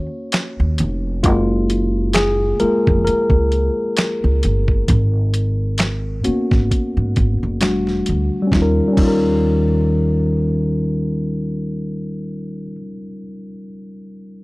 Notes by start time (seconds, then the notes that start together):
Already playing: A#3 C#4 F#4
0.32 snare, clap, closed hi-hat
0.60 D#2
0.78 F1, closed hi-hat
1.23 F#1 G#3 A#3 F4, kick, closed hi-hat
1.70 closed hi-hat
2.13 G#4, snare, clap, closed hi-hat
2.60 G#3 A#3 F4 A#4, muted upright bass stroke, closed hi-hat
2.87 F1, kick
3.05 A#4, muted upright bass stroke, closed hi-hat
3.30 C#2, kick
3.52 closed hi-hat
3.97 snare, clap, closed hi-hat
4.24 C#2
4.43 G1, closed hi-hat
4.68 kick
4.88 G#1, kick, closed hi-hat
5.34 closed hi-hat
5.78 snare, clap, closed hi-hat
6.24 A#3 B3 C#4 F#4, muted upright bass stroke, closed hi-hat
6.51 G#1, kick, snare
6.71 kick, closed hi-hat
6.97 G#2
7.16 G#1, kick, closed hi-hat
7.43 F#1
7.61 E1 G3 A3 D4 F#4, snare, clap, closed hi-hat
7.87 snare
8.06 D2, closed hi-hat
8.42 G3
8.47 C#4
8.52 D#2 D#4, kick, snare
8.57 F4
8.62 A#4
8.88 G3
8.93 C#4
8.97 D#2 D#4, kick, crash
9.03 F4
9.08 A#4